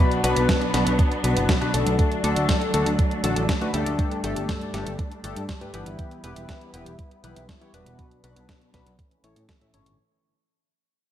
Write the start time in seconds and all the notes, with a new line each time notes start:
Already playing: B2 B3 D4 F#4 B4
0.00 F#3 B3 D4
0.12 closed hi-hat
0.24 B1 B2 B3 D4 F#4 B4, closed hi-hat
0.36 B1, closed hi-hat
0.49 kick, snare, closed hi-hat
0.62 closed hi-hat
0.74 B1 B2 B3 D4 F#4 B4, snare, closed hi-hat
0.86 B1, closed hi-hat
0.99 kick, closed hi-hat
1.12 closed hi-hat
1.24 B1 B2 B3 D4 F#4 B4, closed hi-hat
1.36 F#1, closed hi-hat
1.49 kick, snare, closed hi-hat
1.61 B2 B3 D4 F#4 B4, closed hi-hat
1.74 B1 D3 A3 D4 F#4 A4, closed hi-hat
1.86 B1, closed hi-hat
1.99 F#3 A3, kick, closed hi-hat
2.12 closed hi-hat
2.24 D2 D3 A3 D4 F#4 A4, closed hi-hat
2.36 D2, closed hi-hat
2.49 kick, snare, closed hi-hat
2.61 closed hi-hat
2.74 D2 D3 A3 D4 F#4 A4, closed hi-hat
2.86 D2, closed hi-hat
2.99 kick, closed hi-hat
3.11 closed hi-hat
3.24 A1 D3 A3 D4 F#4 A4, closed hi-hat
3.36 A1, closed hi-hat
3.49 kick, snare, closed hi-hat
3.61 D3 A3 D4 F#4 B4, closed hi-hat
3.74 D2 G2 A3 D4 G4 A4, closed hi-hat
3.86 D2, closed hi-hat
3.99 G3, kick, closed hi-hat
4.12 closed hi-hat
4.24 G1 G2 A3 D4 G4 A4, closed hi-hat
4.36 G1, closed hi-hat
4.49 kick, snare, closed hi-hat
4.61 closed hi-hat
4.74 G1 G2 A3 D4 G4 A4, snare, closed hi-hat
4.86 G1, closed hi-hat
4.99 kick, closed hi-hat
5.12 closed hi-hat
5.24 G1 G2 A3 D4 G4 A4, closed hi-hat
5.36 G2, closed hi-hat
5.49 kick, snare, closed hi-hat
5.61 G2 A3 D4 G4 B4, closed hi-hat
5.74 G1 E3 B3 E4 G4 B4, closed hi-hat
5.86 G1, closed hi-hat
5.99 B3 E4, kick, closed hi-hat
6.11 closed hi-hat
6.24 E1 E3 B3 E4 G4 B4, closed hi-hat
6.36 E1, closed hi-hat
6.49 kick, snare, closed hi-hat
6.61 closed hi-hat
6.74 E1 E3 B3 E4 G4 B4, closed hi-hat
6.86 E1, closed hi-hat
6.99 kick, closed hi-hat
7.11 closed hi-hat
7.24 B1 E3 B3 E4 G4 B4, closed hi-hat
7.36 B1, closed hi-hat
7.49 kick, snare, closed hi-hat
7.61 E3 B3 E4 G4 C#5, closed hi-hat
7.74 E1 B2 B3 D4 F#4 B4, closed hi-hat
7.86 E1, closed hi-hat
7.99 F#3 B3 D4, kick, closed hi-hat
8.11 closed hi-hat
8.24 B1 B2 B3 D4 F#4 B4, closed hi-hat
8.36 B1, closed hi-hat
8.49 kick, snare, closed hi-hat
8.61 closed hi-hat
8.74 B1 B3 D4 F#4 B4, kick, snare, closed hi-hat
8.86 B1, closed hi-hat
8.99 E3 A3 C#4, kick, closed hi-hat
9.11 closed hi-hat
9.24 A1 A2 C#4 E4 A4 C#5, closed hi-hat
9.36 A2, closed hi-hat
9.49 kick, snare, closed hi-hat
9.61 A2 C#4 E4 A4 E5, closed hi-hat
9.74 G1 A2 C#4 E4 A4 C#5, closed hi-hat
9.86 G1, closed hi-hat